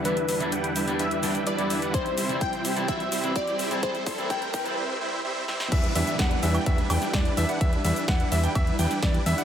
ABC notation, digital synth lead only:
X:1
M:4/4
L:1/8
Q:1/4=127
K:Em
V:1 name="Digital synth lead"
B2 g2 e2 d2 | c2 g2 e2 d2 | c2 g2 z4 | z8 |
z8 |]